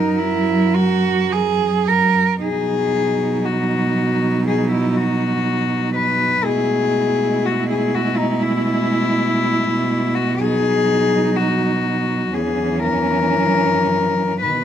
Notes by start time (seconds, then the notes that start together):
Already playing: F#2 F#3 D#4 A#4
0.19 E4
0.75 F#4
1.32 G#4
1.87 A#4
2.41 B2 F#3 D#4 G#4
3.45 F#4
4.47 G#4
4.72 E4
4.97 F#4
5.96 B4
6.44 B2 G#3 E4 G#4
7.46 F#4
7.70 G#4
7.95 F#4
8.18 D#4
8.43 E4
10.15 F#4
10.40 F#3 D#4 G#4
11.36 F#4
12.34 E2 E3 C#4 G#4
12.83 A#4
13.35 F#2
14.43 B2 D#3 B3 B4